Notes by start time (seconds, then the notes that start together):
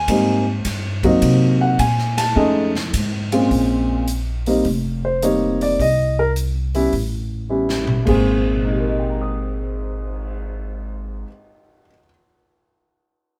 Already playing: G#5
0.08 G#2 G3 A#3 C4 D#4, kick, ride
0.65 G2, kick, snare, hi-hat pedal, ride
1.03 F#3 A#3 C4 D#4, kick, ride
1.22 C3, kick, ride
1.61 F#5
1.79 A#2 G#5, kick, hi-hat pedal, ride
1.98 snare
2.17 A5, snare, ride
2.36 F2 G#3 A3 C#4 D#4, kick
2.75 snare
2.93 G#2, kick, hi-hat pedal, ride
3.32 A#2 G#3 C4 C#4 F4, ride
3.51 A#1, kick, open hi-hat
4.08 closed hi-hat
4.46 G3 A#3 C4 D#4, open hi-hat
4.65 F1, kick, open hi-hat
5.05 C5
5.23 G3 A#3 C4 D#4 C#5, closed hi-hat
5.61 D5, open hi-hat
5.79 C2 D#5, kick, open hi-hat
6.19 A#4
6.36 closed hi-hat
6.75 G3 B3 C#4 E4, open hi-hat
6.93 A1, kick, open hi-hat
7.49 G3 B3 C#4 E4
7.69 snare
7.87 mid tom
8.05 G#1 G#2 G#3 A#3 C4 G#4, kick, crash
8.45 cymbal swell
8.65 D#4
8.72 G4
8.80 A#4
8.89 D#5
8.99 G5
9.10 A#5
9.22 D#6